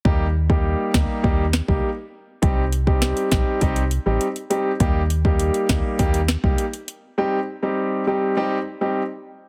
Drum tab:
HH |----------------|x-x-xxx-xxx-xxx-|x-x-xxx-xxx-xxx-|----------------|
SD |------o---o-----|----o-o---------|------o---o-----|----------------|
BD |o--o--o-o--o----|o--o--o-o-------|o--o--o-o--o----|----------------|